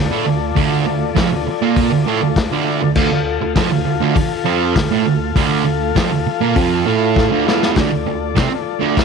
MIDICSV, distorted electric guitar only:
0, 0, Header, 1, 3, 480
1, 0, Start_track
1, 0, Key_signature, -1, "minor"
1, 0, Tempo, 600601
1, 444, Time_signature, 4, 2, 24, 8
1, 7230, End_track
2, 0, Start_track
2, 0, Title_t, "Distorted electric guitar"
2, 0, Program_c, 0, 30
2, 0, Note_on_c, 0, 38, 71
2, 87, Note_off_c, 0, 38, 0
2, 90, Note_on_c, 0, 45, 94
2, 98, Note_on_c, 0, 57, 109
2, 200, Note_off_c, 0, 45, 0
2, 204, Note_off_c, 0, 57, 0
2, 204, Note_on_c, 0, 38, 73
2, 396, Note_off_c, 0, 38, 0
2, 443, Note_on_c, 0, 38, 95
2, 449, Note_on_c, 0, 50, 103
2, 676, Note_off_c, 0, 38, 0
2, 679, Note_off_c, 0, 50, 0
2, 687, Note_on_c, 0, 38, 72
2, 876, Note_off_c, 0, 38, 0
2, 922, Note_on_c, 0, 41, 100
2, 932, Note_on_c, 0, 53, 110
2, 1035, Note_off_c, 0, 41, 0
2, 1040, Note_off_c, 0, 53, 0
2, 1049, Note_on_c, 0, 38, 75
2, 1165, Note_off_c, 0, 38, 0
2, 1294, Note_on_c, 0, 46, 92
2, 1300, Note_on_c, 0, 58, 99
2, 1520, Note_off_c, 0, 46, 0
2, 1523, Note_off_c, 0, 58, 0
2, 1531, Note_on_c, 0, 38, 65
2, 1646, Note_off_c, 0, 38, 0
2, 1654, Note_on_c, 0, 45, 99
2, 1663, Note_on_c, 0, 57, 94
2, 1760, Note_off_c, 0, 45, 0
2, 1764, Note_off_c, 0, 57, 0
2, 1780, Note_on_c, 0, 38, 70
2, 1962, Note_off_c, 0, 38, 0
2, 2012, Note_on_c, 0, 38, 98
2, 2023, Note_on_c, 0, 50, 109
2, 2239, Note_off_c, 0, 38, 0
2, 2244, Note_off_c, 0, 50, 0
2, 2258, Note_on_c, 0, 38, 64
2, 2355, Note_off_c, 0, 38, 0
2, 2364, Note_on_c, 0, 38, 92
2, 2372, Note_on_c, 0, 50, 108
2, 2475, Note_off_c, 0, 38, 0
2, 2478, Note_off_c, 0, 50, 0
2, 2492, Note_on_c, 0, 38, 74
2, 2677, Note_off_c, 0, 38, 0
2, 2727, Note_on_c, 0, 38, 76
2, 2838, Note_off_c, 0, 38, 0
2, 2841, Note_on_c, 0, 41, 95
2, 2847, Note_on_c, 0, 53, 108
2, 2953, Note_off_c, 0, 41, 0
2, 2956, Note_off_c, 0, 53, 0
2, 2965, Note_on_c, 0, 38, 76
2, 3071, Note_off_c, 0, 38, 0
2, 3080, Note_on_c, 0, 38, 78
2, 3193, Note_off_c, 0, 38, 0
2, 3202, Note_on_c, 0, 38, 94
2, 3213, Note_on_c, 0, 50, 108
2, 3310, Note_off_c, 0, 38, 0
2, 3319, Note_off_c, 0, 50, 0
2, 3552, Note_on_c, 0, 41, 88
2, 3558, Note_on_c, 0, 53, 102
2, 3788, Note_off_c, 0, 41, 0
2, 3792, Note_off_c, 0, 53, 0
2, 3805, Note_on_c, 0, 38, 73
2, 3920, Note_off_c, 0, 38, 0
2, 3923, Note_on_c, 0, 45, 89
2, 3934, Note_on_c, 0, 57, 103
2, 4034, Note_off_c, 0, 45, 0
2, 4040, Note_off_c, 0, 57, 0
2, 4044, Note_on_c, 0, 38, 72
2, 4234, Note_off_c, 0, 38, 0
2, 4280, Note_on_c, 0, 38, 89
2, 4287, Note_on_c, 0, 50, 103
2, 4506, Note_off_c, 0, 38, 0
2, 4515, Note_on_c, 0, 38, 68
2, 4517, Note_off_c, 0, 50, 0
2, 4710, Note_off_c, 0, 38, 0
2, 4758, Note_on_c, 0, 41, 88
2, 4768, Note_on_c, 0, 53, 101
2, 4872, Note_off_c, 0, 41, 0
2, 4877, Note_off_c, 0, 53, 0
2, 4885, Note_on_c, 0, 38, 76
2, 4996, Note_off_c, 0, 38, 0
2, 5121, Note_on_c, 0, 46, 92
2, 5136, Note_on_c, 0, 58, 104
2, 5234, Note_off_c, 0, 46, 0
2, 5239, Note_on_c, 0, 41, 90
2, 5242, Note_off_c, 0, 58, 0
2, 5249, Note_on_c, 0, 53, 90
2, 5473, Note_off_c, 0, 41, 0
2, 5479, Note_off_c, 0, 53, 0
2, 5482, Note_on_c, 0, 45, 80
2, 5491, Note_on_c, 0, 57, 98
2, 5836, Note_off_c, 0, 45, 0
2, 5841, Note_off_c, 0, 57, 0
2, 5842, Note_on_c, 0, 38, 87
2, 5850, Note_on_c, 0, 50, 98
2, 5956, Note_off_c, 0, 38, 0
2, 5960, Note_off_c, 0, 50, 0
2, 5965, Note_on_c, 0, 40, 88
2, 5974, Note_on_c, 0, 52, 94
2, 6198, Note_off_c, 0, 40, 0
2, 6202, Note_off_c, 0, 52, 0
2, 6203, Note_on_c, 0, 38, 85
2, 6208, Note_on_c, 0, 50, 95
2, 6314, Note_off_c, 0, 38, 0
2, 6320, Note_off_c, 0, 50, 0
2, 6323, Note_on_c, 0, 38, 65
2, 6434, Note_off_c, 0, 38, 0
2, 6444, Note_on_c, 0, 38, 69
2, 6638, Note_off_c, 0, 38, 0
2, 6680, Note_on_c, 0, 48, 90
2, 6693, Note_on_c, 0, 60, 111
2, 6794, Note_off_c, 0, 48, 0
2, 6803, Note_off_c, 0, 60, 0
2, 7032, Note_on_c, 0, 38, 84
2, 7046, Note_on_c, 0, 50, 102
2, 7230, Note_off_c, 0, 38, 0
2, 7230, Note_off_c, 0, 50, 0
2, 7230, End_track
3, 0, Start_track
3, 0, Title_t, "Muted distorted electric guitar strokes"
3, 1174, Note_on_c, 9, 29, 64
3, 1254, Note_off_c, 9, 29, 0
3, 3320, Note_on_c, 9, 29, 61
3, 3400, Note_off_c, 9, 29, 0
3, 5005, Note_on_c, 9, 29, 61
3, 5085, Note_off_c, 9, 29, 0
3, 6797, Note_on_c, 9, 29, 54
3, 6877, Note_off_c, 9, 29, 0
3, 7230, End_track
0, 0, End_of_file